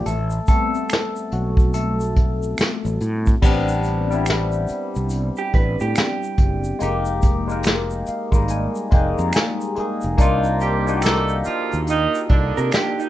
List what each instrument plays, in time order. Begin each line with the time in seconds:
0.06 fretless electric bass A1, tine electric piano A3 A4, closed hi-hat, shaker
0.31 shaker
0.47 tine electric piano G3 A3 B3 C4 A4, kick, closed hi-hat, shaker
0.75 shaker
0.89 finger snap, snare, closed hi-hat, shaker
1.16 shaker
1.32 fretless electric bass B1, tine electric piano F#3 F#4, closed hi-hat
1.57 kick, closed hi-hat, shaker
1.74 tine electric piano A3 A4, closed hi-hat, shaker
2.00 shaker
2.16 kick, closed hi-hat
2.43 shaker
2.58 finger snap, muted fretless electric bass stroke, snare, closed hi-hat, shaker
2.85 fretless electric bass A1, shaker
3.01 fretless electric bass A2, closed hi-hat, shaker
3.26 kick, shaker
3.42 fretless electric bass A1, tine electric piano G3 B3 C4 D4, kick, crash, shaker
3.68 shaker
3.83 closed hi-hat, shaker
4.10 tine electric piano G3 B3 C4 E4, closed hi-hat, shaker
4.26 finger snap, snare, closed hi-hat, shaker
4.52 shaker
4.68 closed hi-hat, shaker
4.95 fretless electric bass C2, closed hi-hat, shaker
5.10 closed hi-hat, shaker
5.36 clean electric guitar G4, shaker
5.53 fretless electric bass A1, clean electric guitar B4, kick, closed hi-hat
5.80 fretless electric bass A2, clean electric guitar G4, shaker
5.95 finger snap, snare, closed hi-hat, shaker
6.23 shaker
6.38 fretless electric bass F#1, kick, closed hi-hat
6.64 shaker
6.79 fretless electric bass F1, tine electric piano G#3 A#3 D#4, closed hi-hat, shaker
6.83 tine electric piano G4
7.05 shaker
7.22 kick, closed hi-hat, shaker
7.47 tine electric piano G#3 A#3 D#4, shaker
7.52 tine electric piano A#4
7.63 finger snap, snare, closed hi-hat, shaker
7.90 shaker
8.06 tine electric piano F5, muted fretless electric bass stroke, closed hi-hat, shaker
8.32 fretless electric bass G#1, tine electric piano G#3 A#3 D#4, kick, shaker
8.36 tine electric piano G3
8.48 tine electric piano G#5, closed hi-hat, shaker
8.75 shaker
8.91 fretless electric bass F1, tine electric piano G#3 A#3 D#4 G5, kick, closed hi-hat
8.95 tine electric piano G#4
9.19 fretless electric bass F2, tine electric piano A#5, shaker
9.33 tine electric piano G#5, finger snap, snare, closed hi-hat, shaker
9.61 shaker
9.75 tine electric piano G#3 A#3 D#4, muted fretless electric bass stroke, closed hi-hat
9.80 tine electric piano G#4
10.01 fretless electric bass F1, closed hi-hat, shaker
10.18 fretless electric bass C2, tine electric piano A#3 D4 D#4 F4, kick, closed hi-hat, shaker
10.44 shaker
10.60 saxophone section G3 G4, closed hi-hat, shaker
10.87 tine electric piano A#3 D4 D#4 F#4, shaker
10.97 tine electric piano G4
11.02 saxophone section A3 A4, finger snap, snare, closed hi-hat, shaker
11.28 shaker
11.45 saxophone section F3 F4, muted fretless electric bass stroke, closed hi-hat, shaker
11.71 fretless electric bass D#2, closed hi-hat, shaker
11.87 saxophone section D#3 D#4, closed hi-hat, shaker
12.14 shaker
12.29 fretless electric bass C2, saxophone section D3 D4, kick, closed hi-hat
12.56 fretless electric bass C3, clean electric guitar A#4, closed hi-hat, shaker
12.71 clean electric guitar G4, finger snap, snare, closed hi-hat, shaker
12.99 clean electric guitar D#4, shaker